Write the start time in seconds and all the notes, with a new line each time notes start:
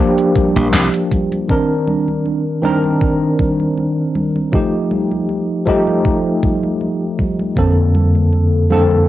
Already playing: F3 A#3 D4 G4
0.18 closed hi-hat
0.35 kick, closed hi-hat, high conga
0.56 A#1, closed hi-hat, high conga
0.73 C2, clap, closed hi-hat, high conga
0.94 closed hi-hat
1.11 kick, closed hi-hat, high conga
1.32 closed hi-hat, high conga
1.48 D#3 C4 D4 A#4, kick, high conga
1.87 high conga
2.08 high conga
2.26 high conga
2.62 D#3 C4 D4 A#4, high conga
2.84 high conga
3.01 kick, high conga
3.39 kick, high conga
3.60 high conga
3.78 high conga
4.15 high conga
4.36 high conga
4.52 F3 A3 D#4 G4, kick
4.91 high conga
5.12 high conga
5.29 high conga
5.66 F3 A3 D#4 G4, kick, high conga
5.87 high conga
6.05 kick
6.43 kick, high conga
6.63 high conga
6.81 high conga
7.19 kick, high conga
7.39 high conga
7.55 F2 D3 A#3 C4 A4, kick
7.95 high conga
8.15 high conga
8.33 high conga
8.69 F2 D3 A#3 C4 A4, high conga
8.91 high conga